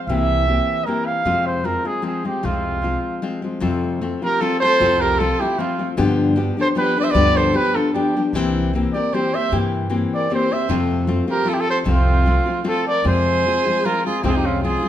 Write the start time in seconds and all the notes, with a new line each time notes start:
0.07 C2 C3 E3 A#3 C4 G4 E5
0.48 E3 A#3 C4 G4
0.85 E3 A#3 C4 G4 A#4
1.06 F5
1.25 F2 C3 F3 G#3 C4 F4
1.46 C5
1.64 F3 G#3 C4 F4 A#4
1.85 F3 G#3 C4 F4 G#4
2.02 F3 G#3 C4 F4 G#4
2.24 F3 G#3 C4 F4 G4
2.43 C2 F2 C3 F3 G#3 C4 F4
2.82 F3 G#3 C4 F4
3.22 F3 G#3 C4 F4
3.42 F3 G#3 C4 F4
3.60 F2 C3 F3 A3 C4 F4
4.01 F3 A3 C4 F4
4.22 F3 A3 C4 F4 G4 A#4
4.40 F3 A3 C4 F4 A4
4.60 F3 C4 F4 A4 C5
4.64 A3
4.79 C2 F2 C3 F3 A3 C4 F4
5.00 G4 A#4
5.18 F3 A3 C4 F4 A4
5.40 F3 A3 C4 E4 F4 G4
5.58 F3 A3 C4 F4
5.79 F3 A3 C4 F4
5.97 G2 D3 F3 B3 D4 G4
6.36 F3 B3 D4 G4
6.57 F3 B3 D4 G4 A4 C5
6.75 F3 B3 D4 G4 B4
6.96 F3 B3 D4 G4 B4 D5
7.03 C5 E5
7.10 G2 D3 B4 D5
7.14 D2 F3 B3 D4 G4
7.36 A4 C5
7.53 F3 B3 D4 G4 B4
7.74 F3 B3 D4 F4 G4 A4
7.93 F3 B3 D4 G4
8.16 F3 B3 D4 G4
8.33 C2 C3 E3 A#3 C4 G4
8.73 E3 A#3 C4 G4
8.93 A#3 C4 G4 A#4 D5
9.13 E3 A#3 C4 G4 C5
9.34 A#3 C4 G4 C5 E5
9.51 G2 C3 E3 A#3 C4 G4
9.89 E3 A#3 C4 G4
10.15 A#4 D5
10.30 E3 A#3 C4 G4 C5
10.51 A#3 C4 G4 C5 E5
10.69 F2 C3 F3 A3 C4 F4
11.07 F3 A3 C4 F4
11.27 F3 A3 C4 F4 G4 A#4
11.45 F3 A3 C4 F4 A4
11.49 F4
11.53 E4 G4
11.59 F4 A4
11.70 A4 C5
11.84 C2 F2 C3 F3 A3 C4 F4
11.89 C4 F4
12.26 F3 A3 C4 F4
12.46 F3 A3 C4 F4
12.64 F3 A3 C4 F4 A4
12.87 A#4 D5
13.04 F2 C3 F3 G#3 C4 F4 C5
13.08 G#4
13.46 F3 G#3 C4 F4
13.65 F3 G#3 C4 F4
13.85 F3 G#3 C4 F4 A#4
14.06 F3 G#3 C4 F4 G#4
14.23 C2 F2 C3 F3 G#3 C4 F4 G4
14.28 F4 G#4
14.35 D#4 G4
14.45 C#4 F4
14.62 F3 G#3 C4 F4 G#4
14.82 F3 G#3 C4 F4